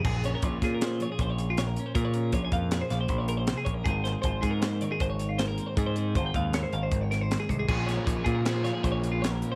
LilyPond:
<<
  \new Staff \with { instrumentName = "Clean electric guitar" } { \time 5/4 \key bes \dorian \tempo 4 = 157 aes'8 des''16 bes'16 des''8 aes'16 bes'16 c''8 des''16 aes'16 c''16 des''8 f'16 des''16 bes'8 c''16 | bes'16 des''16 bes'8 des''16 aes''16 f''8 des''16 c''16 f''16 c''8 des''16 bes'16 c''8 aes'16 des''16 bes'16 | aes'8 c''16 aes'16 c''8 aes'16 bes'16 c''8 des''16 aes'16 c''16 des''8 f'16 c''16 bes'8 c''16 | bes'16 c''16 aes'8 c''16 g''16 f''8 des''16 c''16 f''16 c''8 des''16 bes'16 c''8 aes'16 c''16 aes'16 |
aes'8 des''16 bes'16 des''8 aes'16 bes'16 c''8 des''16 aes'16 c''16 des''8 f'16 des''16 bes'8 c''16 | }
  \new Staff \with { instrumentName = "Clean electric guitar" } { \time 5/4 \key bes \dorian << { aes'8 des'8 f'4 aes'2 bes'8 des'8 | aes'8 des'8 f'4 aes'2. | <aes c' f' bes'>8 c'8 f'4 bes'2 bes'8 c'8 | aes'16 bes'16 c'8 f'4 bes'2. |
aes'8 des'8 ees'16 f'8. aes'2 bes'8 des'8 | } \\ { bes,4. bes4 f4. bes,4 | bes,4. bes4 f4. c8 bes,8 | aes,4. aes4 ees4. aes,4 | aes,4. aes4 ees2 aes,8 |
bes,4. bes4 f4. bes,4 | } >> }
  \new Staff \with { instrumentName = "Overdriven electric guitar" } { \time 5/4 \key bes \dorian r1 r4 | r1 r4 | r1 r4 | r1 r4 |
<bes, f bes des' f'>2 <bes, f bes des' f'>2. | }
  \new Staff \with { instrumentName = "Picked electric bass" } { \clef bass \time 5/4 \key bes \dorian bes,,4 bes,,8 bes,4. bes,,2 | bes,4 bes,,8 f,4 bes,,8 bes,,4. bes,,8 | aes,,4 aes,,8 aes,4. aes,,2 | aes,4 aes,,8 ees,4 aes,,8 aes,,4. c,8 |
bes,,4 bes,,8 bes,4. bes,,2 | }
  \new DrumStaff \with { instrumentName = "Drums" } \drummode { \time 5/4 <cymc bd>8 hh8 <hh bd>8 <hh bd sn>8 <hh sn>8 hh8 <hh bd>8 hh8 <hh sn>8 hh8 | <hh bd>8 hh8 <hh bd>8 <hh bd>8 <hh sn>8 <hh sn>8 <hh bd>8 hh8 <hh sn>8 <hh bd>8 | <hh bd>8 <hh sn>8 <hh bd>8 <hh bd>8 <hh sn>8 hh8 <hh bd>8 hh8 <hh sn>8 hh8 | <hh bd>8 hh8 <hh bd>8 <hh bd>8 <hh sn>8 hh8 <hh bd>8 <hh sn>8 <hh sn>8 <hh bd>8 |
<cymc bd>8 <hh sn>8 <hh bd>8 <hh bd>8 <hh sn>8 <hh sn>8 <hh bd>8 hh8 <hh sn>8 hh8 | }
>>